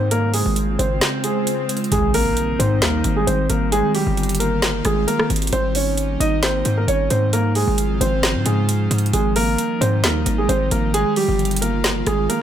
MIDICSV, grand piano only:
0, 0, Header, 1, 2, 480
1, 0, Start_track
1, 0, Key_signature, -4, "major"
1, 0, Tempo, 451128
1, 120, Time_signature, 4, 2, 24, 8
1, 13215, End_track
2, 0, Start_track
2, 0, Title_t, "Grand piano"
2, 0, Program_c, 0, 0
2, 120, Note_on_c, 0, 70, 97
2, 128, Note_on_c, 0, 58, 82
2, 309, Note_off_c, 0, 70, 0
2, 314, Note_off_c, 0, 58, 0
2, 359, Note_on_c, 0, 68, 79
2, 368, Note_on_c, 0, 56, 67
2, 811, Note_off_c, 0, 68, 0
2, 816, Note_off_c, 0, 56, 0
2, 839, Note_on_c, 0, 72, 75
2, 848, Note_on_c, 0, 60, 64
2, 1291, Note_off_c, 0, 72, 0
2, 1295, Note_off_c, 0, 60, 0
2, 1320, Note_on_c, 0, 68, 76
2, 1329, Note_on_c, 0, 56, 58
2, 1998, Note_off_c, 0, 68, 0
2, 2002, Note_off_c, 0, 56, 0
2, 2041, Note_on_c, 0, 68, 86
2, 2050, Note_on_c, 0, 56, 70
2, 2230, Note_off_c, 0, 68, 0
2, 2235, Note_off_c, 0, 56, 0
2, 2282, Note_on_c, 0, 70, 105
2, 2289, Note_on_c, 0, 58, 69
2, 2732, Note_off_c, 0, 70, 0
2, 2736, Note_off_c, 0, 58, 0
2, 2761, Note_on_c, 0, 72, 78
2, 2770, Note_on_c, 0, 60, 64
2, 2950, Note_off_c, 0, 72, 0
2, 2955, Note_off_c, 0, 60, 0
2, 3001, Note_on_c, 0, 70, 86
2, 3010, Note_on_c, 0, 58, 62
2, 3346, Note_off_c, 0, 70, 0
2, 3351, Note_off_c, 0, 58, 0
2, 3367, Note_on_c, 0, 68, 83
2, 3376, Note_on_c, 0, 56, 65
2, 3457, Note_off_c, 0, 68, 0
2, 3461, Note_off_c, 0, 56, 0
2, 3480, Note_on_c, 0, 72, 84
2, 3488, Note_on_c, 0, 60, 64
2, 3669, Note_off_c, 0, 72, 0
2, 3675, Note_off_c, 0, 60, 0
2, 3719, Note_on_c, 0, 70, 88
2, 3728, Note_on_c, 0, 58, 66
2, 3909, Note_off_c, 0, 70, 0
2, 3914, Note_off_c, 0, 58, 0
2, 3960, Note_on_c, 0, 68, 110
2, 3968, Note_on_c, 0, 56, 86
2, 4149, Note_off_c, 0, 68, 0
2, 4154, Note_off_c, 0, 56, 0
2, 4200, Note_on_c, 0, 67, 93
2, 4209, Note_on_c, 0, 55, 70
2, 4651, Note_off_c, 0, 67, 0
2, 4656, Note_off_c, 0, 55, 0
2, 4680, Note_on_c, 0, 70, 85
2, 4689, Note_on_c, 0, 58, 63
2, 5131, Note_off_c, 0, 70, 0
2, 5136, Note_off_c, 0, 58, 0
2, 5161, Note_on_c, 0, 68, 89
2, 5169, Note_on_c, 0, 56, 63
2, 5350, Note_off_c, 0, 68, 0
2, 5355, Note_off_c, 0, 56, 0
2, 5400, Note_on_c, 0, 70, 93
2, 5409, Note_on_c, 0, 58, 69
2, 5590, Note_off_c, 0, 70, 0
2, 5595, Note_off_c, 0, 58, 0
2, 5881, Note_on_c, 0, 72, 95
2, 5889, Note_on_c, 0, 60, 71
2, 6070, Note_off_c, 0, 72, 0
2, 6075, Note_off_c, 0, 60, 0
2, 6122, Note_on_c, 0, 73, 81
2, 6130, Note_on_c, 0, 61, 66
2, 6572, Note_off_c, 0, 73, 0
2, 6577, Note_off_c, 0, 61, 0
2, 6601, Note_on_c, 0, 75, 86
2, 6608, Note_on_c, 0, 63, 70
2, 6790, Note_off_c, 0, 75, 0
2, 6795, Note_off_c, 0, 63, 0
2, 6840, Note_on_c, 0, 72, 88
2, 6849, Note_on_c, 0, 60, 65
2, 7185, Note_off_c, 0, 72, 0
2, 7190, Note_off_c, 0, 60, 0
2, 7208, Note_on_c, 0, 70, 78
2, 7217, Note_on_c, 0, 58, 55
2, 7297, Note_off_c, 0, 70, 0
2, 7302, Note_off_c, 0, 58, 0
2, 7322, Note_on_c, 0, 73, 96
2, 7331, Note_on_c, 0, 61, 70
2, 7510, Note_off_c, 0, 73, 0
2, 7516, Note_off_c, 0, 61, 0
2, 7560, Note_on_c, 0, 72, 83
2, 7569, Note_on_c, 0, 60, 64
2, 7750, Note_off_c, 0, 72, 0
2, 7755, Note_off_c, 0, 60, 0
2, 7801, Note_on_c, 0, 70, 97
2, 7809, Note_on_c, 0, 58, 80
2, 7990, Note_off_c, 0, 70, 0
2, 7995, Note_off_c, 0, 58, 0
2, 8040, Note_on_c, 0, 68, 84
2, 8049, Note_on_c, 0, 56, 70
2, 8492, Note_off_c, 0, 68, 0
2, 8496, Note_off_c, 0, 56, 0
2, 8520, Note_on_c, 0, 72, 79
2, 8529, Note_on_c, 0, 60, 65
2, 8971, Note_off_c, 0, 72, 0
2, 8976, Note_off_c, 0, 60, 0
2, 9000, Note_on_c, 0, 68, 76
2, 9009, Note_on_c, 0, 56, 61
2, 9678, Note_off_c, 0, 68, 0
2, 9682, Note_off_c, 0, 56, 0
2, 9720, Note_on_c, 0, 68, 86
2, 9729, Note_on_c, 0, 56, 74
2, 9909, Note_off_c, 0, 68, 0
2, 9915, Note_off_c, 0, 56, 0
2, 9960, Note_on_c, 0, 70, 102
2, 9969, Note_on_c, 0, 58, 70
2, 10411, Note_off_c, 0, 70, 0
2, 10416, Note_off_c, 0, 58, 0
2, 10440, Note_on_c, 0, 72, 77
2, 10448, Note_on_c, 0, 60, 63
2, 10629, Note_off_c, 0, 72, 0
2, 10634, Note_off_c, 0, 60, 0
2, 10680, Note_on_c, 0, 70, 81
2, 10689, Note_on_c, 0, 58, 60
2, 11025, Note_off_c, 0, 70, 0
2, 11030, Note_off_c, 0, 58, 0
2, 11048, Note_on_c, 0, 68, 79
2, 11056, Note_on_c, 0, 56, 66
2, 11136, Note_off_c, 0, 68, 0
2, 11141, Note_off_c, 0, 56, 0
2, 11160, Note_on_c, 0, 72, 86
2, 11169, Note_on_c, 0, 60, 64
2, 11350, Note_off_c, 0, 72, 0
2, 11355, Note_off_c, 0, 60, 0
2, 11401, Note_on_c, 0, 70, 84
2, 11410, Note_on_c, 0, 58, 65
2, 11590, Note_off_c, 0, 70, 0
2, 11595, Note_off_c, 0, 58, 0
2, 11640, Note_on_c, 0, 68, 109
2, 11649, Note_on_c, 0, 56, 88
2, 11830, Note_off_c, 0, 68, 0
2, 11835, Note_off_c, 0, 56, 0
2, 11881, Note_on_c, 0, 67, 91
2, 11890, Note_on_c, 0, 55, 72
2, 12332, Note_off_c, 0, 67, 0
2, 12337, Note_off_c, 0, 55, 0
2, 12360, Note_on_c, 0, 70, 83
2, 12368, Note_on_c, 0, 58, 64
2, 12811, Note_off_c, 0, 70, 0
2, 12816, Note_off_c, 0, 58, 0
2, 12840, Note_on_c, 0, 68, 87
2, 12848, Note_on_c, 0, 56, 63
2, 13029, Note_off_c, 0, 68, 0
2, 13034, Note_off_c, 0, 56, 0
2, 13081, Note_on_c, 0, 70, 89
2, 13090, Note_on_c, 0, 58, 70
2, 13215, Note_off_c, 0, 58, 0
2, 13215, Note_off_c, 0, 70, 0
2, 13215, End_track
0, 0, End_of_file